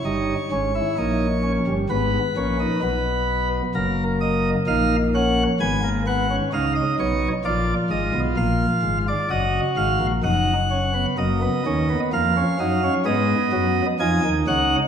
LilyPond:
<<
  \new Staff \with { instrumentName = "Pipe organ" } { \time 4/4 \key dis \phrygian \tempo 4 = 65 << { cis''2 b'2 | ais'8 dis''8 eis''8 fis''8 gis''8 fis''8 eis''16 dis''16 cis''8 | d''8 dis''8 eis''8. d''16 dis''8 eis''8 fis''4 | \key ees \minor ees''4 f''4 ees''4 aes''8 ges''8 | } \\ { dis'8 cis'16 e'16 dis'8 cis'8 b8 cis'16 dis'16 b4 | ais4 dis'8 cis'8 b16 ais16 b16 cis'16 dis'4 | eis'2 fis'4 dis'8 cis'16 b16 | bes16 ces'16 des'16 ces'16 bes16 des'16 ees'16 des'16 ces'4 ees'4 | } >> }
  \new Staff \with { instrumentName = "Pipe organ" } { \clef bass \time 4/4 \key dis \phrygian <g,, g,>8 <gis,, gis,>8 <ais,, ais,>8. <g,, g,>16 <gis,, gis,>8 <ais,, ais,>8 <b,, b,>4 | <fis,, fis,>4 <ais,, ais,>4 <gis,, gis,>4 <cis, cis>8 <b,, b,>8 | <ais,, ais,>8 <gis,, gis,>16 <b,, b,>16 <ais,, ais,>8 <gis,, gis,>8 <fis,, fis,>8 <gis,, gis,>16 <ais,, ais,>16 <fis,, fis,>4 | \key ees \minor <ges,, ges,>8 <ees, ees>8 <f, f>8 <ges, ges>8 <aes, aes>8 <ges, ges>8 <f, f>16 <ees, ees>16 <des, des>8 | }
>>